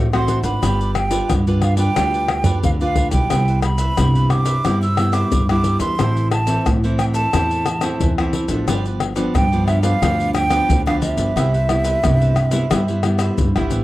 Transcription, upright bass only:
0, 0, Header, 1, 2, 480
1, 0, Start_track
1, 0, Key_signature, 0, "major"
1, 0, Tempo, 671141
1, 448, Time_signature, 4, 2, 24, 8
1, 9897, End_track
2, 0, Start_track
2, 0, Title_t, "Upright bass"
2, 0, Program_c, 0, 32
2, 0, Note_on_c, 0, 33, 86
2, 275, Note_off_c, 0, 33, 0
2, 308, Note_on_c, 0, 32, 64
2, 419, Note_off_c, 0, 32, 0
2, 448, Note_on_c, 0, 31, 79
2, 856, Note_off_c, 0, 31, 0
2, 927, Note_on_c, 0, 43, 89
2, 1335, Note_off_c, 0, 43, 0
2, 1407, Note_on_c, 0, 38, 84
2, 1815, Note_off_c, 0, 38, 0
2, 1889, Note_on_c, 0, 38, 82
2, 2194, Note_off_c, 0, 38, 0
2, 2228, Note_on_c, 0, 35, 71
2, 2338, Note_off_c, 0, 35, 0
2, 2365, Note_on_c, 0, 36, 82
2, 2773, Note_off_c, 0, 36, 0
2, 2846, Note_on_c, 0, 48, 92
2, 3254, Note_off_c, 0, 48, 0
2, 3323, Note_on_c, 0, 43, 82
2, 3733, Note_off_c, 0, 43, 0
2, 3805, Note_on_c, 0, 43, 87
2, 4112, Note_off_c, 0, 43, 0
2, 4147, Note_on_c, 0, 40, 74
2, 4257, Note_off_c, 0, 40, 0
2, 4285, Note_on_c, 0, 33, 78
2, 4693, Note_off_c, 0, 33, 0
2, 4767, Note_on_c, 0, 45, 87
2, 5175, Note_off_c, 0, 45, 0
2, 5247, Note_on_c, 0, 40, 88
2, 5655, Note_off_c, 0, 40, 0
2, 5726, Note_on_c, 0, 40, 86
2, 6032, Note_off_c, 0, 40, 0
2, 6068, Note_on_c, 0, 33, 74
2, 6178, Note_off_c, 0, 33, 0
2, 6205, Note_on_c, 0, 31, 77
2, 6614, Note_off_c, 0, 31, 0
2, 6684, Note_on_c, 0, 43, 94
2, 7094, Note_off_c, 0, 43, 0
2, 7166, Note_on_c, 0, 38, 95
2, 7575, Note_off_c, 0, 38, 0
2, 7646, Note_on_c, 0, 38, 85
2, 7953, Note_off_c, 0, 38, 0
2, 7990, Note_on_c, 0, 31, 76
2, 8099, Note_off_c, 0, 31, 0
2, 8123, Note_on_c, 0, 36, 74
2, 8533, Note_off_c, 0, 36, 0
2, 8609, Note_on_c, 0, 48, 101
2, 9017, Note_off_c, 0, 48, 0
2, 9089, Note_on_c, 0, 43, 90
2, 9498, Note_off_c, 0, 43, 0
2, 9570, Note_on_c, 0, 43, 83
2, 9672, Note_off_c, 0, 43, 0
2, 9696, Note_on_c, 0, 31, 82
2, 9796, Note_off_c, 0, 31, 0
2, 9800, Note_on_c, 0, 33, 72
2, 9897, Note_off_c, 0, 33, 0
2, 9897, End_track
0, 0, End_of_file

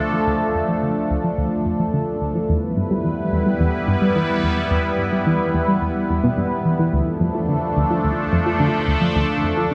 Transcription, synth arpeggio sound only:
0, 0, Header, 1, 2, 480
1, 0, Start_track
1, 0, Tempo, 555556
1, 231, Time_signature, 4, 2, 24, 8
1, 8416, End_track
2, 0, Start_track
2, 0, Title_t, "Synth arpeggio sound"
2, 0, Program_c, 0, 84
2, 112, Note_on_c, 0, 53, 75
2, 186, Note_off_c, 0, 53, 0
2, 233, Note_on_c, 0, 38, 78
2, 306, Note_off_c, 0, 38, 0
2, 474, Note_on_c, 0, 41, 72
2, 547, Note_off_c, 0, 41, 0
2, 592, Note_on_c, 0, 53, 72
2, 666, Note_off_c, 0, 53, 0
2, 713, Note_on_c, 0, 50, 75
2, 786, Note_off_c, 0, 50, 0
2, 953, Note_on_c, 0, 38, 71
2, 1026, Note_off_c, 0, 38, 0
2, 1074, Note_on_c, 0, 53, 67
2, 1146, Note_off_c, 0, 53, 0
2, 1193, Note_on_c, 0, 38, 76
2, 1266, Note_off_c, 0, 38, 0
2, 1432, Note_on_c, 0, 41, 73
2, 1506, Note_off_c, 0, 41, 0
2, 1553, Note_on_c, 0, 53, 73
2, 1626, Note_off_c, 0, 53, 0
2, 1674, Note_on_c, 0, 50, 79
2, 1746, Note_off_c, 0, 50, 0
2, 1914, Note_on_c, 0, 38, 73
2, 1987, Note_off_c, 0, 38, 0
2, 2033, Note_on_c, 0, 53, 72
2, 2106, Note_off_c, 0, 53, 0
2, 2153, Note_on_c, 0, 40, 82
2, 2226, Note_off_c, 0, 40, 0
2, 2391, Note_on_c, 0, 43, 74
2, 2465, Note_off_c, 0, 43, 0
2, 2512, Note_on_c, 0, 55, 74
2, 2585, Note_off_c, 0, 55, 0
2, 2632, Note_on_c, 0, 52, 76
2, 2705, Note_off_c, 0, 52, 0
2, 2872, Note_on_c, 0, 40, 72
2, 2945, Note_off_c, 0, 40, 0
2, 2991, Note_on_c, 0, 55, 68
2, 3065, Note_off_c, 0, 55, 0
2, 3111, Note_on_c, 0, 40, 78
2, 3185, Note_off_c, 0, 40, 0
2, 3350, Note_on_c, 0, 43, 75
2, 3424, Note_off_c, 0, 43, 0
2, 3471, Note_on_c, 0, 55, 72
2, 3545, Note_off_c, 0, 55, 0
2, 3591, Note_on_c, 0, 52, 76
2, 3665, Note_off_c, 0, 52, 0
2, 3831, Note_on_c, 0, 40, 74
2, 3905, Note_off_c, 0, 40, 0
2, 3949, Note_on_c, 0, 55, 73
2, 4024, Note_off_c, 0, 55, 0
2, 4069, Note_on_c, 0, 40, 83
2, 4144, Note_off_c, 0, 40, 0
2, 4308, Note_on_c, 0, 43, 70
2, 4384, Note_off_c, 0, 43, 0
2, 4430, Note_on_c, 0, 55, 73
2, 4504, Note_off_c, 0, 55, 0
2, 4551, Note_on_c, 0, 52, 77
2, 4625, Note_off_c, 0, 52, 0
2, 4790, Note_on_c, 0, 40, 71
2, 4864, Note_off_c, 0, 40, 0
2, 4908, Note_on_c, 0, 55, 67
2, 4983, Note_off_c, 0, 55, 0
2, 5029, Note_on_c, 0, 40, 79
2, 5104, Note_off_c, 0, 40, 0
2, 5269, Note_on_c, 0, 40, 76
2, 5344, Note_off_c, 0, 40, 0
2, 5389, Note_on_c, 0, 47, 98
2, 5434, Note_off_c, 0, 47, 0
2, 5509, Note_on_c, 0, 43, 78
2, 5554, Note_off_c, 0, 43, 0
2, 5749, Note_on_c, 0, 52, 72
2, 5824, Note_off_c, 0, 52, 0
2, 5869, Note_on_c, 0, 52, 74
2, 5981, Note_off_c, 0, 52, 0
2, 5988, Note_on_c, 0, 38, 81
2, 6064, Note_off_c, 0, 38, 0
2, 6227, Note_on_c, 0, 41, 71
2, 6303, Note_off_c, 0, 41, 0
2, 6348, Note_on_c, 0, 53, 75
2, 6424, Note_off_c, 0, 53, 0
2, 6468, Note_on_c, 0, 50, 77
2, 6543, Note_off_c, 0, 50, 0
2, 6709, Note_on_c, 0, 38, 74
2, 6784, Note_off_c, 0, 38, 0
2, 6830, Note_on_c, 0, 53, 70
2, 6904, Note_off_c, 0, 53, 0
2, 6949, Note_on_c, 0, 38, 76
2, 7024, Note_off_c, 0, 38, 0
2, 7190, Note_on_c, 0, 41, 74
2, 7265, Note_off_c, 0, 41, 0
2, 7310, Note_on_c, 0, 53, 73
2, 7384, Note_off_c, 0, 53, 0
2, 7430, Note_on_c, 0, 50, 77
2, 7504, Note_off_c, 0, 50, 0
2, 7671, Note_on_c, 0, 38, 76
2, 7745, Note_off_c, 0, 38, 0
2, 7790, Note_on_c, 0, 53, 74
2, 7864, Note_off_c, 0, 53, 0
2, 7910, Note_on_c, 0, 38, 80
2, 7984, Note_off_c, 0, 38, 0
2, 8151, Note_on_c, 0, 41, 71
2, 8225, Note_off_c, 0, 41, 0
2, 8271, Note_on_c, 0, 53, 74
2, 8345, Note_off_c, 0, 53, 0
2, 8416, End_track
0, 0, End_of_file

